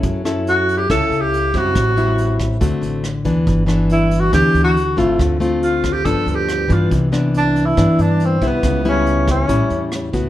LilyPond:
<<
  \new Staff \with { instrumentName = "Tenor saxophone" } { \time 4/4 \key g \lydian \tempo 4 = 140 r4 \tuplet 3/2 { fis'4 g'8 a'4 g'8~ } g'8 fis'8~ | fis'4. r2 r8 | r4 \tuplet 3/2 { e'4 fis'8 g'4 fis'8~ } fis'8 e'8 | r4 \tuplet 3/2 { f'4 g'8 a'8. a'16 g'8~ } g'8 f'8 |
r4 \tuplet 3/2 { d'4 e'8~ } e'8 d'8 c'8 b8~ | b8 cis'4 cis'4. r4 | }
  \new Staff \with { instrumentName = "Nylon-string guitar" } { \time 4/4 \key g \lydian << { <cis' e' a'>8 <cis' e' a'>4. <cis' e' a'>4. <g c' e'>8~ | <g c' e'>8 <g c' e'>4. <a c' fis'>4 r8 <e b d'>8~ | <e b d'>8 <e b d'>4. <e b d'>4 r8 <a c' eis'>8~ | <a c' eis'>8 <a c' f'>4. <f b d'>4. <e b d'>8~ |
<e b d'>8 <e b d'>4. <e b d'>4. <g b e'>8~ | <g b e'>8 <g b e'>4. <g cis' e'>4. <a b fis'>8 | } \\ { fis2 cis2 | a,2 d2 | g,2 d2 | d2 g,2 |
c2 g,2 | cis2 a,2 | } >> }
  \new Staff \with { instrumentName = "Upright bass" } { \clef bass \time 4/4 \key g \lydian fis,2 cis,16 r16 cis,4 fis,8 | a,,2 d,16 r16 a,,4 d,8 | g,,2 d,16 r16 d,4 g,,8 | d,2 g,,16 r16 d,4 g,8 |
c,2 g,16 r16 g,4 c,8 | cis,2 a,,16 r16 e,4 cis,8 | }
  \new DrumStaff \with { instrumentName = "Drums" } \drummode { \time 4/4 <hh bd>8 <hh ss>8 hh8 hh8 <hh bd ss>8 hh8 hh8 <hh bd>8 | <hh bd ss>8 hh8 hh8 <hh bd ss>8 <hh bd>8 hh8 <hh ss>8 <hh bd>8 | <hh bd>8 <hh ss>8 hh8 hh8 <hh bd ss>8 hh8 hh8 <hh bd>8 | <hh bd ss>8 hh8 hh8 <hh bd ss>8 <hh bd>8 hh8 <hh ss>8 <hh bd>8 |
<hh bd>8 <hh ss>8 hh8 hh8 <hh bd ss>8 hh8 hh8 <hh bd>8 | <hh bd ss>8 hh8 hh8 <hh bd ss>8 <hh bd>8 hh8 <hh ss>8 <hh bd>8 | }
>>